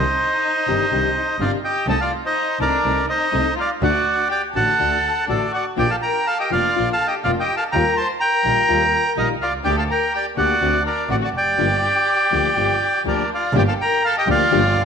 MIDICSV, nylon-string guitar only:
0, 0, Header, 1, 2, 480
1, 0, Start_track
1, 0, Key_signature, -2, "minor"
1, 0, Tempo, 480769
1, 1873, Time_signature, 4, 2, 24, 8
1, 2834, Tempo, 486618
1, 14682, End_track
2, 0, Start_track
2, 0, Title_t, "Nylon-string guitar"
2, 0, Program_c, 0, 24
2, 674, Note_on_c, 0, 48, 58
2, 679, Note_on_c, 0, 51, 65
2, 683, Note_on_c, 0, 55, 63
2, 684, Note_on_c, 0, 62, 66
2, 684, Note_on_c, 0, 67, 65
2, 843, Note_off_c, 0, 48, 0
2, 845, Note_off_c, 0, 51, 0
2, 847, Note_off_c, 0, 55, 0
2, 848, Note_off_c, 0, 62, 0
2, 848, Note_off_c, 0, 67, 0
2, 910, Note_on_c, 0, 48, 59
2, 919, Note_on_c, 0, 55, 59
2, 920, Note_on_c, 0, 51, 54
2, 923, Note_on_c, 0, 62, 57
2, 926, Note_on_c, 0, 67, 60
2, 1080, Note_off_c, 0, 48, 0
2, 1084, Note_off_c, 0, 55, 0
2, 1085, Note_off_c, 0, 51, 0
2, 1086, Note_off_c, 0, 62, 0
2, 1088, Note_off_c, 0, 67, 0
2, 1394, Note_on_c, 0, 48, 62
2, 1400, Note_on_c, 0, 51, 62
2, 1402, Note_on_c, 0, 55, 60
2, 1404, Note_on_c, 0, 62, 63
2, 1408, Note_on_c, 0, 67, 64
2, 1561, Note_off_c, 0, 48, 0
2, 1564, Note_off_c, 0, 51, 0
2, 1565, Note_off_c, 0, 55, 0
2, 1566, Note_off_c, 0, 62, 0
2, 1568, Note_off_c, 0, 67, 0
2, 1875, Note_on_c, 0, 60, 79
2, 1880, Note_on_c, 0, 63, 84
2, 1888, Note_on_c, 0, 69, 78
2, 1962, Note_off_c, 0, 60, 0
2, 1965, Note_off_c, 0, 63, 0
2, 1969, Note_off_c, 0, 69, 0
2, 2601, Note_on_c, 0, 60, 58
2, 2606, Note_on_c, 0, 63, 65
2, 2611, Note_on_c, 0, 69, 70
2, 2766, Note_off_c, 0, 60, 0
2, 2769, Note_off_c, 0, 63, 0
2, 2771, Note_off_c, 0, 69, 0
2, 2847, Note_on_c, 0, 60, 61
2, 2852, Note_on_c, 0, 69, 63
2, 2853, Note_on_c, 0, 63, 63
2, 3009, Note_off_c, 0, 60, 0
2, 3011, Note_off_c, 0, 69, 0
2, 3012, Note_off_c, 0, 63, 0
2, 3315, Note_on_c, 0, 60, 58
2, 3317, Note_on_c, 0, 63, 58
2, 3324, Note_on_c, 0, 69, 68
2, 3482, Note_off_c, 0, 60, 0
2, 3483, Note_off_c, 0, 63, 0
2, 3487, Note_off_c, 0, 69, 0
2, 3800, Note_on_c, 0, 50, 81
2, 3808, Note_on_c, 0, 57, 78
2, 3813, Note_on_c, 0, 62, 80
2, 3815, Note_on_c, 0, 66, 89
2, 3887, Note_off_c, 0, 50, 0
2, 3891, Note_off_c, 0, 57, 0
2, 3893, Note_off_c, 0, 62, 0
2, 3894, Note_off_c, 0, 66, 0
2, 4526, Note_on_c, 0, 50, 59
2, 4532, Note_on_c, 0, 57, 64
2, 4536, Note_on_c, 0, 66, 66
2, 4537, Note_on_c, 0, 62, 66
2, 4691, Note_off_c, 0, 50, 0
2, 4694, Note_off_c, 0, 57, 0
2, 4696, Note_off_c, 0, 62, 0
2, 4696, Note_off_c, 0, 66, 0
2, 4757, Note_on_c, 0, 50, 57
2, 4766, Note_on_c, 0, 57, 61
2, 4772, Note_on_c, 0, 62, 64
2, 4774, Note_on_c, 0, 66, 59
2, 4927, Note_off_c, 0, 50, 0
2, 4931, Note_off_c, 0, 57, 0
2, 4935, Note_off_c, 0, 62, 0
2, 4936, Note_off_c, 0, 66, 0
2, 5239, Note_on_c, 0, 50, 49
2, 5250, Note_on_c, 0, 57, 58
2, 5251, Note_on_c, 0, 62, 54
2, 5256, Note_on_c, 0, 66, 54
2, 5410, Note_off_c, 0, 50, 0
2, 5416, Note_off_c, 0, 57, 0
2, 5416, Note_off_c, 0, 62, 0
2, 5419, Note_off_c, 0, 66, 0
2, 5721, Note_on_c, 0, 53, 73
2, 5726, Note_on_c, 0, 58, 81
2, 5727, Note_on_c, 0, 62, 76
2, 5732, Note_on_c, 0, 65, 80
2, 5815, Note_off_c, 0, 53, 0
2, 5817, Note_off_c, 0, 58, 0
2, 5817, Note_off_c, 0, 62, 0
2, 5820, Note_off_c, 0, 65, 0
2, 6450, Note_on_c, 0, 53, 62
2, 6452, Note_on_c, 0, 58, 60
2, 6458, Note_on_c, 0, 62, 65
2, 6459, Note_on_c, 0, 65, 66
2, 6620, Note_off_c, 0, 53, 0
2, 6620, Note_off_c, 0, 58, 0
2, 6624, Note_off_c, 0, 62, 0
2, 6624, Note_off_c, 0, 65, 0
2, 6698, Note_on_c, 0, 53, 56
2, 6702, Note_on_c, 0, 62, 62
2, 6703, Note_on_c, 0, 58, 58
2, 6706, Note_on_c, 0, 65, 64
2, 6863, Note_off_c, 0, 53, 0
2, 6865, Note_off_c, 0, 58, 0
2, 6865, Note_off_c, 0, 62, 0
2, 6867, Note_off_c, 0, 65, 0
2, 7188, Note_on_c, 0, 53, 54
2, 7189, Note_on_c, 0, 58, 62
2, 7193, Note_on_c, 0, 62, 64
2, 7196, Note_on_c, 0, 65, 68
2, 7347, Note_off_c, 0, 53, 0
2, 7348, Note_off_c, 0, 58, 0
2, 7350, Note_off_c, 0, 62, 0
2, 7351, Note_off_c, 0, 65, 0
2, 7674, Note_on_c, 0, 55, 72
2, 7675, Note_on_c, 0, 51, 75
2, 7684, Note_on_c, 0, 63, 80
2, 7685, Note_on_c, 0, 65, 77
2, 7751, Note_off_c, 0, 55, 0
2, 7752, Note_off_c, 0, 51, 0
2, 7756, Note_off_c, 0, 63, 0
2, 7757, Note_off_c, 0, 65, 0
2, 8364, Note_on_c, 0, 51, 67
2, 8373, Note_on_c, 0, 55, 62
2, 8375, Note_on_c, 0, 63, 63
2, 8375, Note_on_c, 0, 65, 65
2, 8531, Note_off_c, 0, 51, 0
2, 8535, Note_off_c, 0, 55, 0
2, 8536, Note_off_c, 0, 63, 0
2, 8537, Note_off_c, 0, 65, 0
2, 8596, Note_on_c, 0, 51, 54
2, 8600, Note_on_c, 0, 55, 60
2, 8603, Note_on_c, 0, 63, 67
2, 8606, Note_on_c, 0, 65, 61
2, 8765, Note_off_c, 0, 51, 0
2, 8767, Note_off_c, 0, 55, 0
2, 8769, Note_off_c, 0, 63, 0
2, 8770, Note_off_c, 0, 65, 0
2, 9082, Note_on_c, 0, 55, 65
2, 9085, Note_on_c, 0, 51, 54
2, 9089, Note_on_c, 0, 65, 68
2, 9091, Note_on_c, 0, 63, 62
2, 9246, Note_off_c, 0, 55, 0
2, 9248, Note_off_c, 0, 51, 0
2, 9250, Note_off_c, 0, 63, 0
2, 9250, Note_off_c, 0, 65, 0
2, 9547, Note_on_c, 0, 50, 77
2, 9548, Note_on_c, 0, 58, 76
2, 9552, Note_on_c, 0, 62, 87
2, 9559, Note_on_c, 0, 67, 87
2, 9638, Note_off_c, 0, 50, 0
2, 9639, Note_off_c, 0, 58, 0
2, 9641, Note_off_c, 0, 62, 0
2, 9644, Note_off_c, 0, 67, 0
2, 10259, Note_on_c, 0, 50, 57
2, 10266, Note_on_c, 0, 58, 66
2, 10268, Note_on_c, 0, 62, 68
2, 10274, Note_on_c, 0, 67, 63
2, 10429, Note_off_c, 0, 50, 0
2, 10433, Note_off_c, 0, 58, 0
2, 10434, Note_off_c, 0, 62, 0
2, 10437, Note_off_c, 0, 67, 0
2, 10500, Note_on_c, 0, 50, 62
2, 10503, Note_on_c, 0, 57, 59
2, 10511, Note_on_c, 0, 60, 64
2, 10514, Note_on_c, 0, 66, 67
2, 10669, Note_off_c, 0, 50, 0
2, 10671, Note_off_c, 0, 57, 0
2, 10675, Note_off_c, 0, 60, 0
2, 10677, Note_off_c, 0, 66, 0
2, 10973, Note_on_c, 0, 50, 62
2, 10975, Note_on_c, 0, 57, 63
2, 10982, Note_on_c, 0, 60, 64
2, 10989, Note_on_c, 0, 66, 68
2, 11145, Note_off_c, 0, 50, 0
2, 11145, Note_off_c, 0, 57, 0
2, 11149, Note_off_c, 0, 60, 0
2, 11152, Note_off_c, 0, 66, 0
2, 11458, Note_on_c, 0, 50, 76
2, 11458, Note_on_c, 0, 53, 70
2, 11462, Note_on_c, 0, 58, 83
2, 11462, Note_on_c, 0, 62, 76
2, 11467, Note_on_c, 0, 67, 85
2, 11547, Note_off_c, 0, 53, 0
2, 11548, Note_off_c, 0, 50, 0
2, 11549, Note_off_c, 0, 58, 0
2, 11549, Note_off_c, 0, 62, 0
2, 11552, Note_off_c, 0, 67, 0
2, 12180, Note_on_c, 0, 50, 57
2, 12187, Note_on_c, 0, 58, 61
2, 12188, Note_on_c, 0, 53, 65
2, 12189, Note_on_c, 0, 62, 57
2, 12194, Note_on_c, 0, 67, 64
2, 12348, Note_off_c, 0, 50, 0
2, 12351, Note_off_c, 0, 53, 0
2, 12351, Note_off_c, 0, 58, 0
2, 12352, Note_off_c, 0, 62, 0
2, 12354, Note_off_c, 0, 67, 0
2, 12423, Note_on_c, 0, 50, 59
2, 12432, Note_on_c, 0, 53, 59
2, 12432, Note_on_c, 0, 58, 57
2, 12435, Note_on_c, 0, 62, 63
2, 12438, Note_on_c, 0, 67, 60
2, 12591, Note_off_c, 0, 50, 0
2, 12595, Note_off_c, 0, 53, 0
2, 12595, Note_off_c, 0, 58, 0
2, 12597, Note_off_c, 0, 62, 0
2, 12598, Note_off_c, 0, 67, 0
2, 12908, Note_on_c, 0, 53, 61
2, 12910, Note_on_c, 0, 50, 57
2, 12913, Note_on_c, 0, 58, 55
2, 12913, Note_on_c, 0, 62, 64
2, 12920, Note_on_c, 0, 67, 60
2, 13079, Note_off_c, 0, 50, 0
2, 13079, Note_off_c, 0, 53, 0
2, 13081, Note_off_c, 0, 58, 0
2, 13081, Note_off_c, 0, 62, 0
2, 13084, Note_off_c, 0, 67, 0
2, 13395, Note_on_c, 0, 50, 87
2, 13398, Note_on_c, 0, 58, 93
2, 13401, Note_on_c, 0, 53, 95
2, 13404, Note_on_c, 0, 62, 93
2, 13405, Note_on_c, 0, 67, 104
2, 13485, Note_off_c, 0, 50, 0
2, 13486, Note_off_c, 0, 58, 0
2, 13487, Note_off_c, 0, 53, 0
2, 13489, Note_off_c, 0, 62, 0
2, 13489, Note_off_c, 0, 67, 0
2, 14109, Note_on_c, 0, 50, 76
2, 14114, Note_on_c, 0, 53, 78
2, 14115, Note_on_c, 0, 62, 87
2, 14117, Note_on_c, 0, 58, 74
2, 14122, Note_on_c, 0, 67, 78
2, 14281, Note_off_c, 0, 50, 0
2, 14283, Note_off_c, 0, 53, 0
2, 14283, Note_off_c, 0, 62, 0
2, 14284, Note_off_c, 0, 58, 0
2, 14287, Note_off_c, 0, 67, 0
2, 14350, Note_on_c, 0, 53, 95
2, 14354, Note_on_c, 0, 50, 96
2, 14356, Note_on_c, 0, 58, 101
2, 14357, Note_on_c, 0, 62, 94
2, 14360, Note_on_c, 0, 67, 97
2, 14442, Note_off_c, 0, 53, 0
2, 14444, Note_off_c, 0, 50, 0
2, 14445, Note_off_c, 0, 58, 0
2, 14446, Note_off_c, 0, 62, 0
2, 14447, Note_off_c, 0, 67, 0
2, 14682, End_track
0, 0, End_of_file